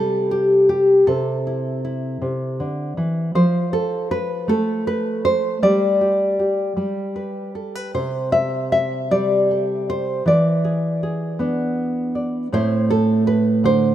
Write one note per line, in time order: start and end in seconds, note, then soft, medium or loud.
0.00 1.04 C3 medium
0.00 1.08 G3 medium
0.00 1.06 A4 medium
0.31 0.68 G4 medium
0.69 1.08 G4 medium
1.07 2.20 C3 medium
1.07 3.35 A4 medium
1.47 1.83 E4 soft
1.85 3.35 E4 soft
2.22 2.60 C3 medium
2.60 2.97 D3 medium
2.97 3.35 E3 medium
3.35 5.58 F3 medium
3.35 3.73 C5 medium
3.73 4.11 A4 medium
4.11 4.49 B4 medium
4.48 5.57 A3 medium
4.48 4.87 A4 medium
4.87 5.24 B4 medium
5.25 5.63 C5 medium
5.63 6.76 G3 medium
5.63 7.15 D5 medium
6.01 6.39 G4 soft
6.39 6.77 G4 soft
6.77 9.10 G3 medium
6.77 7.89 G4 soft
7.16 7.55 B4 soft
7.55 7.75 A4 soft
7.75 7.94 B4 soft
7.94 10.21 C3 medium
7.94 8.32 C5 medium
8.32 8.71 E5 loud
8.72 9.11 E5 medium
9.11 10.26 G3 medium
9.11 9.88 D5 medium
9.51 10.22 A4 soft
9.90 10.26 C5 medium
10.26 12.47 E3 medium
10.26 12.14 D5 medium
10.64 11.02 G#4 soft
11.03 12.48 G#4 soft
11.39 12.47 B3 medium
11.39 12.48 D4 soft
12.15 12.48 D5 soft
12.53 13.95 A2 medium
12.53 13.95 A3 soft
12.53 13.95 C4 soft
12.53 13.95 E4 soft
12.53 12.90 C5 loud
12.90 13.27 A4 medium
13.27 13.64 B4 medium
13.64 13.95 D3 medium
13.64 13.95 C5 loud